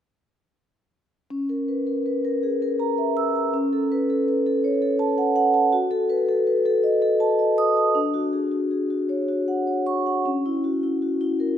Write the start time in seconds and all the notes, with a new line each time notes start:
1.30 C#4
1.49 A#4
1.68 B4
1.87 A#4
2.06 B4
2.25 A#4
2.43 G#4
2.62 A#4
2.80 A#5
2.98 E5
3.17 E6
3.36 A#5
3.54 C#4
3.73 A4
3.92 B4
4.10 A4
4.28 B4
4.46 A4
4.64 C#5
4.82 A4
4.99 A5
5.18 F#5
5.36 F#5
5.54 A5
5.73 F#4
5.91 A4
6.10 B4
6.29 A4
6.47 B4
6.66 A4
6.84 D#5
7.02 A4
7.20 A5
7.39 D#5
7.58 D#6
7.77 A5
7.95 D4
8.14 F#4
8.33 G#4
8.52 F#4
8.71 G#4
8.90 F#4
9.09 C#5
9.29 F#4
9.48 F#5
9.67 C#5
9.86 C#6
10.06 F#5
10.26 C#4
10.46 E4
10.64 F#4
10.83 E4
11.02 F#4
11.21 E4
11.40 A#4